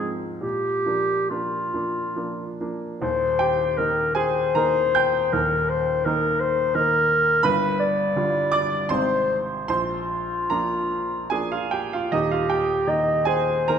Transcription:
Already playing: G#2 G#4
0.00 F3 C4 D#4
0.40 A#2 G4
0.86 F3 A#3 D4
1.29 F3 A#3 D4 F4
1.73 F3 A#3 D4
2.16 F3 A#3 D4
2.61 F3 A#3 D4
3.01 D#1 D#2 C5
3.39 G4 G5
3.77 D#3 A#3 D#4 A#4
4.14 G#4 C5 G#5
4.55 D#3 A#3 D#4 A#4 A#5
4.95 G5 G6
5.33 D#1 D#2 A#4
5.69 C5
6.05 D#3 A#3 D#4 A#4
6.40 C5
6.75 D#3 A#3 D#4 A#4
7.43 G1 G2 B4 B5
7.79 D5
8.16 D3 G3 F4
8.52 D5 D6
8.89 G#1 C3 C4 D#4 C5 C6
9.68 A#1 F4 C5 C6
10.50 F3 A#3 D4 A#4 A#5
11.30 F3 A#3 D4 G#4 G#5
11.52 F4 F5
11.71 G4 G5
11.93 F4 F5
12.12 D#1 D#2 D#4 G4 D#5
12.31 F4 F5
12.50 G4 G5
12.87 D#3 A#3 D#4 D#5
13.25 G#4 C5 G#5
13.68 D#3 A#3 D#4 A#4 A#5

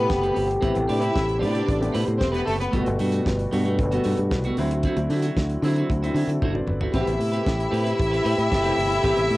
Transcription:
Already playing: B2 C3 A3 B3 F#4 G4 A4 B4
0.09 F#1, muted clean electric guitar stroke, kick, snare
0.22 C4 G4 B4, closed hi-hat
0.34 G1 C4 G4 B4, open hi-hat
0.48 muted clean electric guitar stroke, closed hi-hat
0.61 A1 C3 A3 B3 C4 E4 G4 B4, kick, closed hi-hat
0.75 A1, muted clean electric guitar stroke, closed hi-hat
0.88 A2 C4 D4 G4 B4 D5, open hi-hat
1.01 C4 E4 G4 B4 E5, closed hi-hat
1.14 A1, muted clean electric guitar stroke, kick, snare
1.27 muted clean electric guitar stroke, closed hi-hat
1.39 A2 C3 A3 B3 C4 D4 G4 B4 D5, open hi-hat
1.52 C4 G4 B4, closed hi-hat
1.66 A1, muted clean electric guitar stroke, kick, closed hi-hat
1.79 C3 A3 B3 G4, muted clean electric guitar stroke, closed hi-hat
1.92 A2 C4 G4 B4, open hi-hat
2.06 A2, muted clean electric guitar stroke, closed hi-hat
2.18 E1 C4 C5, muted clean electric guitar stroke, kick, snare
2.32 B3 C4 G4 B4, closed hi-hat
2.45 F#1 A3 C4 G4 A4 B4, open hi-hat
2.59 B3 B4, muted clean electric guitar stroke, closed hi-hat
2.71 G1 B2 G3 A3 B3 F4 F#4 A4, kick, closed hi-hat
2.75 B4
2.81 F#4
2.85 G1, muted clean electric guitar stroke, closed hi-hat
2.99 G2 A3 B3 F#4, open hi-hat
3.12 A3 B3 F#4, closed hi-hat
3.25 G1, muted clean electric guitar stroke, kick, snare
3.37 muted clean electric guitar stroke, closed hi-hat
3.51 G2 B2 G3 A3 B3 F#4, open hi-hat
3.65 A3 B3 F#4, closed hi-hat
3.79 G1, muted clean electric guitar stroke, kick, closed hi-hat
3.91 B2 G3 A3 B3 F#4, closed hi-hat
4.04 G2 A3 B3 F#4, open hi-hat
4.17 G2, muted clean electric guitar stroke, closed hi-hat
4.31 C2, muted clean electric guitar stroke, kick, snare
4.44 A3 B3 F#4, closed hi-hat
4.57 D2 D3 F#3 C4 E4 F#4, open hi-hat
4.71 muted clean electric guitar stroke, closed hi-hat
4.83 C4 E4 F#4, kick, closed hi-hat
4.97 D2, muted clean electric guitar stroke, closed hi-hat
5.10 D3 C4 E4 F#4, open hi-hat
5.22 C4 E4 F#4, closed hi-hat
5.37 D2, muted clean electric guitar stroke, kick, snare
5.49 muted clean electric guitar stroke, closed hi-hat
5.62 D3 F#3 C4 E4 F#4, open hi-hat
5.76 C4 E4 F#4, closed hi-hat
5.90 D2, muted clean electric guitar stroke, kick, closed hi-hat
6.02 D3 F#3 C4 E4 F#4, closed hi-hat
6.14 D3 C4 D4 E4 F#4, open hi-hat
6.27 D3 F#4 A4, muted clean electric guitar stroke, closed hi-hat
6.42 F#1 C4 E4 F#4 A4 C5, kick, high tom
6.54 B4 D5, muted clean electric guitar stroke, mid tom
6.66 G1 B4, muted clean electric guitar stroke, mid tom
6.80 C4 E4 F#4 A4, floor tom
6.93 A1 C3 A3 B3 C4 E4 F#4 G4 B4 E5, kick, closed hi-hat
7.01 G4
7.06 A1, muted clean electric guitar stroke, closed hi-hat
7.19 A2, muted clean electric guitar stroke, open hi-hat
7.32 C4 G4 B4, closed hi-hat
7.44 A1, muted clean electric guitar stroke, kick, snare
7.58 muted clean electric guitar stroke, closed hi-hat
7.71 A2 C4 G4 B4, open hi-hat
7.84 C4 G4 B4, closed hi-hat
7.97 A1, muted clean electric guitar stroke, kick
8.02 closed hi-hat
8.11 C4 G4 B4, closed hi-hat
8.24 A2 C4 G4 B4, open hi-hat
8.37 A2, muted clean electric guitar stroke, closed hi-hat
8.49 F#1 B2 A3 B3 A4, muted clean electric guitar stroke, kick, snare
8.57 C3
8.62 C4 G4 B4, closed hi-hat
8.76 G1, muted clean electric guitar stroke, open hi-hat
8.89 muted clean electric guitar stroke, closed hi-hat
9.02 A1 C3 A3 B3 C4 G4 B4, kick, closed hi-hat
9.17 A1, muted clean electric guitar stroke, closed hi-hat
9.30 A2, muted clean electric guitar stroke, open hi-hat

